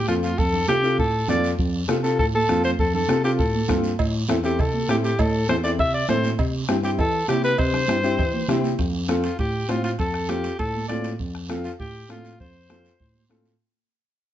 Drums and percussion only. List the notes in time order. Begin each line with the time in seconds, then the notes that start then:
0.08 bombo rim, high conga, short guiro
0.23 high conga, short guiro
0.38 bombo low, long guiro
0.53 low conga
0.68 bombo rim, high conga, short guiro
0.83 short guiro
0.98 bombo low, high conga, long guiro
1.28 bombo rim, high conga, low conga, short guiro
1.44 short guiro
1.59 bombo low, long guiro
1.89 bombo rim, high conga, short guiro
2.04 short guiro
2.19 bombo low, high conga, long guiro
2.34 high conga
2.49 bombo rim, high conga, short guiro
2.64 high conga, short guiro
2.79 bombo low, high conga, long guiro
2.94 low conga
3.09 bombo rim, high conga, short guiro
3.24 short guiro
3.39 bombo low, high conga, long guiro
3.54 high conga
3.68 bombo low, bombo rim, high conga, low conga, short guiro
3.84 short guiro
3.99 bombo low, cowbell, high conga, long guiro
4.29 bombo rim, high conga, short guiro
4.44 short guiro
4.59 bombo low, cowbell, high conga, long guiro
4.74 high conga
4.89 bombo rim, high conga, short guiro
5.04 short guiro
5.19 bombo low, cowbell, high conga, long guiro
5.49 bombo rim, high conga, short guiro
5.64 short guiro
5.79 bombo low, cowbell, high conga, long guiro
6.09 bombo rim, high conga, low conga, low timbale, short guiro
6.24 high conga, short guiro
6.39 bombo low, cowbell, high conga, long guiro
6.68 bombo rim, high conga, short guiro
6.83 short guiro
6.99 bombo low, cowbell, high conga, long guiro
7.28 bombo rim, high conga, low timbale, short guiro
7.44 short guiro
7.58 bombo low, cowbell, high conga, long guiro
7.73 bombo rim, low conga
7.88 bombo rim, high conga, short guiro
8.03 short guiro
8.18 bombo low, cowbell, high conga, long guiro
8.34 high conga
8.49 bombo rim, high conga, low conga, short guiro
8.64 high conga, short guiro
8.79 bombo low, high conga, high timbale, long guiro
9.09 bombo rim, high conga, high timbale, short guiro
9.24 high timbale, short guiro
9.39 bombo low, high conga, high timbale, long guiro
9.69 bombo rim, high conga, high timbale, low timbale, short guiro
9.84 high timbale, short guiro
9.99 bombo low, high conga, high timbale, long guiro
10.14 bombo rim
10.29 bombo rim, high conga, high timbale, short guiro
10.44 high timbale, short guiro
10.59 bombo low, high conga, high timbale, long guiro
10.74 high conga
10.89 bombo rim, high conga, high timbale, short guiro
11.04 high timbale, short guiro
11.19 bombo low, high conga, long guiro
11.35 bombo rim
11.49 bombo rim, high conga, short guiro
11.64 short guiro
11.80 bombo low, high conga, long guiro
12.09 bombo rim, high conga, short guiro
12.25 high conga, short guiro
12.40 bombo low, high conga, long guiro
12.70 bombo rim, high conga, short guiro
12.85 short guiro
13.00 bombo low, high conga, long guiro
13.15 high conga
13.30 bombo rim, high conga, short guiro
13.45 high conga, short guiro